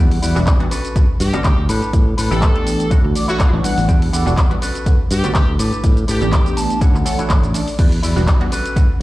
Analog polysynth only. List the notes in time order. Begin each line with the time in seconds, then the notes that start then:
Already playing: E3 G3 B3 D4 F#5
0.35 E3 G3 B3 D4 F#4
0.60 E3 G3 B3 D4 F#4
0.95 D3 A3 B3 C#4 F#4
1.33 D3 A3 B3 C#4 F#4
2.31 E3 A3 B3 D4 G4
2.55 E3 A3 B3 D4 G4
2.90 E3 A3 D4 F#4
3.53 E3 A3 C#4 D4 F#4
3.63 E3 G3 B3 D4 F#5
4.26 E3 G3 B3 D4 F#4
4.50 E3 G3 B3 D4 F#4
4.86 D3 A3 B3 C#4 F#4
5.23 D3 A3 B3 C#4 F#4
6.21 E3 A3 B3 D4 G4
6.45 E3 A3 B3 D4 G4
6.81 E3 A3 C#4 D4 F#4
7.05 E3 A3 D4 A4 C#5
7.54 E3 A3 C#4 D4 A4
8.16 E3 G3 B3 D4 F#4
8.40 E3 G3 B3 D4 F#4
8.76 D3 A3 B3 C#4 F#4